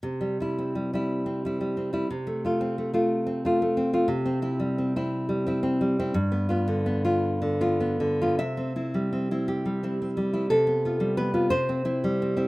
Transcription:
\new Staff \with { instrumentName = "Nylon-string guitar" } { \time 6/8 \key c \major \tempo 4. = 58 << { r2. | r2. | r2. | r2. |
e''4. g'4. | a'4 b'8 c''4. | } \\ { c16 g16 <g e'>16 c'16 g16 <g e'>8 c'16 <g e'>16 g16 c'16 <g e'>16 | c16 a16 <a f'>16 c'16 a16 <a f'>8 c'16 <a f'>16 a16 c'16 <a f'>16 | c16 c'16 <c' e'>16 g16 c'16 <c' e'>8 g16 <c' e'>16 c'16 g16 <c' e'>16 | g,16 b16 <b f'>16 d16 b16 <b f'>8 d16 <b f'>16 b16 d16 <b f'>16 |
c16 c'16 <c' e'>16 g16 c'16 <c' e'>8 g16 <c' e'>16 c'16 g16 <c' e'>16 | c16 b16 <b f'>16 g16 b16 <b f'>16 c16 c'16 <c' e'>16 g16 c'16 <c' e'>16 | } >> }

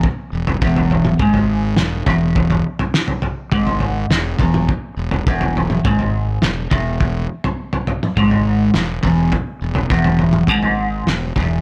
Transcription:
<<
  \new Staff \with { instrumentName = "Clean electric guitar" } { \clef bass \time 4/4 \key e \major \tempo 4 = 103 r8 e,8 e,4 gis,4 e,8 e,8~ | e,8 r4. gis,4 e,8 e,8 | r8 e,8 e,4 gis,4 e,8 e,8~ | e,8 r4. gis,4 e,8 e,8 |
r8 e,8 e,4 gis,4 e,8 e,8 | }
  \new Staff \with { instrumentName = "Fingered electric bass" } { \clef bass \time 4/4 \key e \major r8 e,,8 e,,4 gis,,4 e,,8 e,,8~ | e,,8 r4. gis,,4 e,,8 e,,8 | r8 e,,8 e,,4 gis,,4 e,,8 e,,8~ | e,,8 r4. gis,,4 e,,8 e,,8 |
r8 e,,8 e,,4 gis,,4 e,,8 e,,8 | }
  \new DrumStaff \with { instrumentName = "Drums" } \drummode { \time 4/4 <bd tomfh>8. tomfh16 bd16 tomfh16 tomfh16 toml16 <bd tomfh>16 tomfh8. <sn toml>8 <bd tomfh>8 | <bd tomfh>16 tomfh8 tomfh16 sn16 tomfh16 tomfh8 <bd tomfh>16 tomfh16 tomfh8 sn8 <bd tomfh>16 toml16 | <bd tomfh>8. tomfh16 bd16 tomfh16 tomfh16 toml16 <bd tomfh>16 tomfh8. <sn toml>8 <bd tomfh>8 | <bd tomfh>8. tomfh16 r16 tomfh16 tomfh16 toml16 <bd tomfh>16 tomfh8. <sn toml>8 <bd tomfh>8 |
<bd tomfh>8. tomfh16 bd16 tomfh16 tomfh16 toml16 <bd tomfh>16 tomfh8. <sn toml>8 <bd tomfh>8 | }
>>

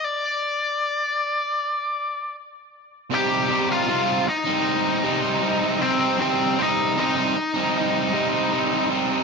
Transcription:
<<
  \new Staff \with { instrumentName = "Lead electric guitar" } { \time 4/4 \key c \minor \tempo 4 = 78 d''2. r4 | <g' g''>8. <f' f''>8. <ees' ees''>2 <c' c''>8 | <c' c''>8 <ees' ees''>8 <ees' ees''>2~ <ees' ees''>8 r8 | }
  \new Staff \with { instrumentName = "Distorted electric guitar" } { \time 4/4 \key c \minor r1 | <c g c' ees'>8 <c g c' ees'>8 <c g c' ees'>16 <g c' ees'>8 <g c' ees'>8. <c g c' ees'>16 <g c' ees'>16 <c g c' ees'>16 <g c' ees'>16 <c g c' ees'>16 <g c' ees'>16 | <c g c' ees'>8 <c g c' ees'>8 <c g c' ees'>16 <g c' ees'>8 <g c' ees'>8. <c g c' ees'>16 <g c' ees'>16 <c g c' ees'>16 <g c' ees'>16 <c g c' ees'>16 <g c' ees'>16 | }
>>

